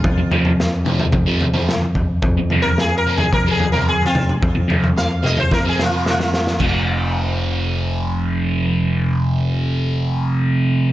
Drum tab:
CC |----------------|----------------|----------------|x---------------|
SD |----o-------o---|----o-----------|----o---o-o-oooo|----------------|
T2 |------o-o-------|--------o-----oo|------o---------|----------------|
FT |o-oo---oo-oo--o-|o-oo---oo-oo--o-|o-oo---o--------|----------------|
BD |o-------o-----o-|o-------o-------|o-------o-------|o---------------|

CC |----------------|
SD |----------------|
T2 |----------------|
FT |----------------|
BD |----------------|